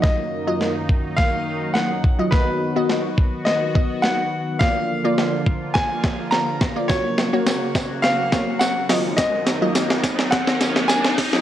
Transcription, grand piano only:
\new Staff \with { instrumentName = "Grand piano" } { \time 4/4 \key dis \minor \tempo 4 = 105 dis''2 eis''4 fis''4 | b'2 dis''4 fis''4 | eis''2 gis''4 ais''4 | cis''2 eis''4 fis''4 |
dis''2 fis''4 gis''4 | }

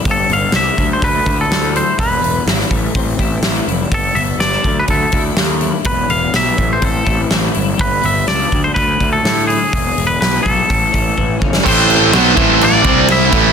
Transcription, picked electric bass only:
\new Staff \with { instrumentName = "Picked electric bass" } { \clef bass \time 4/4 \key a \minor \tempo 4 = 124 g,,8 g,,8 c,8 d,8 d,8 d,8 d,4 | e,,8 e,,8 gis,,8 a,,8 a,,8 a,,8 a,,8 f,,8 | g,,8 g,,8 g,,8 d,8 d,8 d,8 dis,4 | e,,8 e,,8 b,,8 a,,8 a,,8 a,,8 a,,8 g,,8 |
g,,8 g,,8 cis,8 d,8 d,8 d,8 a,4 | e,,8 e,,8 b,,8 b,,8 a,,8 a,,8 a,,8 g,,8 | \key a \dorian a,,4 b,,8 a,,4 c,4 a,,8 | }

